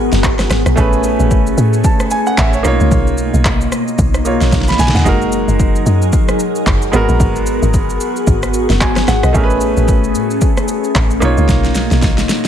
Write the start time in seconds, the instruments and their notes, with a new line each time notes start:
Already playing: log drum bass G#1, grand piano G#3 B3 F#4 A#4, ambient pad B3 F#4 G#4 A#4
0.12 log drum bass F#1, snare, shaker
0.24 log drum bass G#1, kick, clap, shaker
0.39 cross-stick, snare, shaker
0.50 log drum bass G#1, cross-stick, snare, shaker
0.66 log drum bass B1, cross-stick, shaker
0.76 log drum bass A1, grand piano A3 C#4 G#4, ambient pad A3 C#4, kick, shaker
0.80 grand piano B4
0.93 shaker
1.04 shaker
1.20 log drum bass A1, shaker
1.31 kick, shaker
1.47 shaker
1.58 log drum bass A2, shaker
1.73 shaker
1.84 grand piano A5, kick, shaker
2.00 cross-stick, shaker
2.11 grand piano G#5, shaker
2.27 grand piano F#5, shaker
2.38 log drum bass A1, grand piano E5, kick, clap, shaker
2.53 grand piano C#5, shaker
2.63 log drum bass B1, ambient pad B2 A#3 D#4, grand piano A#3 D#4 F4, cross-stick, shaker
2.67 grand piano C#5
2.80 log drum bass C#2, shaker
2.91 log drum bass B1, kick, shaker
3.07 shaker
3.18 shaker
3.34 log drum bass B1, shaker
3.45 kick, clap, shaker
3.61 shaker
3.72 cross-stick, shaker
3.88 shaker
3.98 log drum bass B1, kick, shaker
4.14 cross-stick, shaker
4.25 grand piano A#3 D#4 F4 C#5, shaker
4.41 log drum bass A#1, snare, shaker
4.52 log drum bass B1, kick, snare, shaker
4.61 snare
4.68 grand piano B5, snare, shaker
4.79 log drum bass B1, grand piano G#5, snare, shaker
4.88 snare
4.95 log drum bass D#2, grand piano F#5, snare, shaker
5.04 log drum bass F#1, ambient pad F#3 G#4 A#4, grand piano G#3 D#4 F#4, kick, shaker
5.08 grand piano A#4
5.22 shaker
5.32 shaker
5.48 log drum bass F#1, shaker
5.60 kick, shaker
5.76 shaker
5.86 log drum bass F#2, shaker
6.02 shaker
6.13 kick, shaker
6.28 cross-stick, shaker
6.39 shaker
6.55 shaker
6.67 log drum bass F#1, kick, clap, shaker
6.82 shaker
6.92 log drum bass G#1, grand piano G#3 B3 F#4, ambient pad B3 F#4 G#4, cross-stick, shaker
6.96 grand piano A#4
7.09 log drum bass A#1, shaker
7.20 log drum bass G#1, kick, shaker
7.36 shaker
7.46 shaker
7.62 log drum bass G#1, shaker
7.74 kick, shaker
7.90 shaker
8.01 shaker
8.16 shaker
8.27 log drum bass G#1, kick, shaker
8.43 cross-stick, shaker
8.54 shaker
8.70 log drum bass F#1, snare, shaker
8.81 log drum bass G#1, grand piano G#5, kick, clap, shaker
8.96 cross-stick, snare, shaker
9.08 log drum bass G#1, grand piano F#5, cross-stick, snare, shaker
9.23 log drum bass B1, grand piano D#5, cross-stick, shaker
9.33 log drum bass A1, grand piano A3 C#4 G#4, ambient pad A3 C#4, kick, shaker
9.37 grand piano A#4
9.44 grand piano B4
9.50 shaker
9.61 shaker
9.77 log drum bass A1, shaker
9.88 kick, shaker
10.04 shaker
10.15 log drum bass A2, shaker
10.31 shaker
10.41 kick, shaker
10.57 cross-stick, shaker
10.68 shaker
10.84 shaker
10.95 log drum bass A1, kick, clap, shaker
11.11 shaker
11.20 log drum bass B1, ambient pad B2 A#3 D#4, grand piano A#3 D#4 F4, cross-stick, shaker
11.25 grand piano C#5
11.37 log drum bass C#2, shaker
11.49 log drum bass B1, kick, snare, shaker
11.64 snare, shaker
11.75 snare, shaker
11.91 log drum bass B1, snare, shaker
12.02 kick, snare, shaker
12.18 snare, shaker
12.29 snare, shaker